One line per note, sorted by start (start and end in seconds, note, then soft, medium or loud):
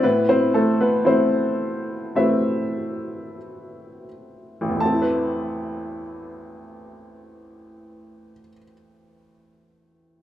0.03 4.77 A2 medium
0.03 0.26 B3 medium
0.03 0.26 E4 soft
0.03 0.29 B4 medium
0.29 0.52 C4 soft
0.29 0.52 C5 medium
0.54 0.78 A3 soft
0.54 0.80 A4 medium
0.81 1.04 B3 soft
0.81 1.07 B4 medium
1.04 2.13 A3 soft
1.04 2.13 C4 soft
1.04 2.13 E4 soft
1.04 2.16 C5 medium
2.15 3.37 A3 soft
2.15 3.37 C4 soft
2.15 4.06 E4 soft
2.15 4.06 B4 soft
2.15 4.06 C5 soft
2.15 4.06 E5 medium
4.61 8.32 A1 soft
4.69 8.40 E2 soft
4.77 8.48 A3 soft
4.77 8.51 A5 medium
4.85 8.56 C4 soft
4.93 8.64 E4 soft
5.02 8.72 B4 soft